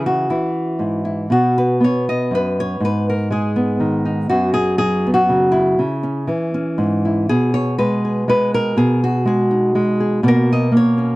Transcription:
Already playing: C#3 E3 C#4 E4
0.06 F#4
0.30 E3 E4
0.79 G#2
1.05 E4
1.30 B2 F#4
1.58 B4
1.80 B3 C#5
2.09 D#5
2.31 F#2 B4
2.60 C#5
2.80 G#2
2.85 B4
3.10 A#4
3.30 G#3 G#4
3.56 B3
3.80 D#3
4.05 D#4
4.29 F#2 F#3 B3 C#4 F#4
4.54 G#4
4.78 F#3 G#4
5.07 B3
5.14 F#4
5.29 C#3
5.52 E4
5.79 C#3
6.03 C#4
6.27 E3 C#4
6.54 C#4
6.78 G#2
7.05 E4
7.29 B2 G#4
7.54 C#5
7.78 G#3 B4
8.05 G#4
8.28 G#3 B4
8.54 A#4
8.77 B2 G#4
9.04 F#4
9.25 G#3 G#4
9.51 D#4
9.75 G#3
10.00 G#4
10.23 B2 A#3 F#4
10.28 A#4
10.53 D#5
10.72 A#3
10.77 C#5
10.98 C#4

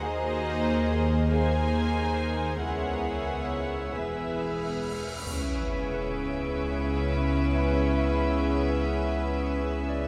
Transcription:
Already playing: D#2 A#3 C5 A#5
0.00 D#2 A#3 D#4 G#4 A#4 C5 D#5
1.29 A#3 D#4 G#4 C5 G#5
2.62 C#2 B3 E4 G#4 B4 C#5 E5 F#5, cymbal swell
3.92 E1 E2 B3 E4 G#4 B4 E5
4.61 B3
4.92 G#3
5.26 C#2 C#3 B3 C#4 E4 G#4 B4 C#5 E5 D7, sub drop
5.94 B4 C#7
7.57 B5
9.89 D5

